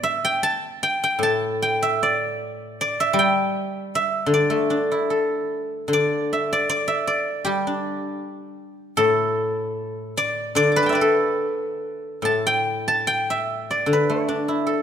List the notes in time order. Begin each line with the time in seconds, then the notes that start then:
Already playing: A2 B3 E4 A4 D5
0.03 E5
0.25 G5
0.43 A5
0.83 G5
1.04 G5
1.19 A2
1.23 A5
1.62 G5
1.82 E5
2.03 D5
2.81 D5
3.00 E5
3.13 G3
3.19 G5
3.95 E5
4.26 D3
4.34 D5
4.50 A3
4.70 D4
4.91 E4
5.10 A4
5.88 D3
5.93 D5
6.33 E5
6.53 D5
6.69 D5
6.88 E5
7.07 D5
7.45 G3 G4
7.67 D4
8.97 A2 A4
10.17 D5
10.55 D3 D5
10.72 D6
10.76 B4 B5
10.83 G5 A5
10.89 D5 E5
10.95 B4
11.01 A4
12.22 A2 A5
12.47 G5
12.88 A5
13.07 G5
13.30 E5
13.71 D5
13.86 D3
13.93 B4
14.10 A3
14.28 D4 D5
14.48 E4
14.67 A4